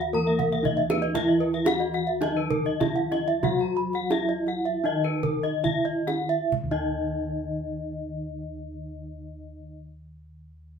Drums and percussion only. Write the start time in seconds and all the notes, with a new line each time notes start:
0.39 kendang slap, kendang low
0.53 kendang slap
0.65 kendang slap, kendang low
0.90 kendang high
1.15 kendang low
1.53 kendang slap
1.66 kendang slap, kendang high
1.94 kendang slap
2.22 kendang high
2.50 kendang slap, kendang low
2.65 kendang slap
2.81 kendang slap, kendang high, kendang low
3.12 kendang high
3.43 kendang low
3.59 kendang slap
3.76 kendang slap
3.93 kendang slap
4.10 kendang slap, kendang high
4.47 kendang slap
5.04 kendang slap
5.23 kendang slap, kendang low
5.44 kendang slap
5.65 kendang slap, kendang low
6.08 kendang slap, kendang high
6.52 kendang low